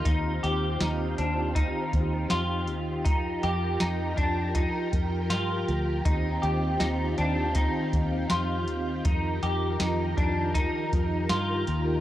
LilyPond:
<<
  \new Staff \with { instrumentName = "Clean electric guitar" } { \time 4/4 \key ees \major \tempo 4 = 80 ees'8 g'8 ees'8 d'8 ees'4 f'4 | ees'8 g'8 ees'8 d'8 ees'4 f'4 | ees'8 g'8 ees'8 d'8 ees'4 f'4 | ees'8 g'8 ees'8 d'8 ees'4 f'4 | }
  \new Staff \with { instrumentName = "String machine" } { \time 4/4 \key ees \major <ees c' f' g'>1 | <f f' bes'>1 | <ees c' f'>1 | <ees f bes'>1 | }
  \new Staff \with { instrumentName = "Fingered electric bass" } { \clef bass \time 4/4 \key ees \major ees,8 ees,8 ees,8 ees,8. r16 ees,8 f,8 ees,8 | f,8 f,8 f,8 f,8. r16 f,8 g,8 d,8 | ees,8 ees,8 ees,8 ees,8. r16 ees,8 f,8 ees,8 | f,8 f,8 f,8 f,8. r16 f,8 g,8 ees,8 | }
  \new DrumStaff \with { instrumentName = "Drums" } \drummode { \time 4/4 <hh bd>8 hh8 <hh sn>8 hh8 <hh bd>8 <hh bd>8 <hh sn>8 hh8 | <hh bd>8 hh8 <hh sn>8 <hh bd>8 <hh bd>8 <hh bd>8 <hh sn>8 hh8 | <hh bd>8 hh8 <hh sn>8 hh8 <hh bd>8 <hh bd>8 <hh sn>8 hh8 | <hh bd>8 hh8 <hh sn>8 <hh bd>8 <hh bd>8 <hh bd>8 <hh sn>8 hh8 | }
>>